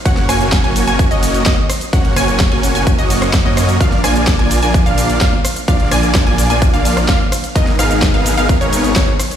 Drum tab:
RD |x-x-x-x-x-x---x-|x-x-x-x-x-x-x-x-|x-x-x-x-x-x-x-x-|x-x-x-x-x-x-x-x-|
HH |xxoxxxoxxxoxx-ox|xxoxxxoxxxoxx-ox|xxoxxxoxxxoxx-ox|xxoxxxoxxxoxx-ox|
SH |x-xxx-xxxxxxx-xx|x-xxx-xxxxxxx-xx|x-xxx-xxxxxxx-xx|x-xxx-xxxxxxx-xx|
SD |-or-o-------o-r-|--r-o------ro-r-|-or-o-------o-r-|--r-o------ro-r-|
BD |o---o---o---o---|o---o---o---o---|o---o---o---o---|o---o---o---o---|

RD |x-x-x-x-x-x-x-x-|
HH |xxoxxxoxxxoxx-ox|
SH |x-xxx-xxxxxxx-xx|
SD |-or-o-------o-r-|
BD |o---o---o---o---|